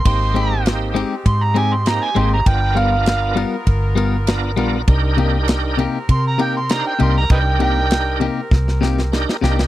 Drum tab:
CC |x---------------|----------------|----------------|----------------|
RD |x-x-x-x-x-x-x-x-|x-x-x-x-x-x-x-x-|x-x-x-x-x-x-x-x-|x-x-x-x---------|
SD |----o-------o---|----o-------o---|----o-------o---|----o---oooooooo|
BD |o-------o-------|o-------o-------|o-------o-------|o-------o-------|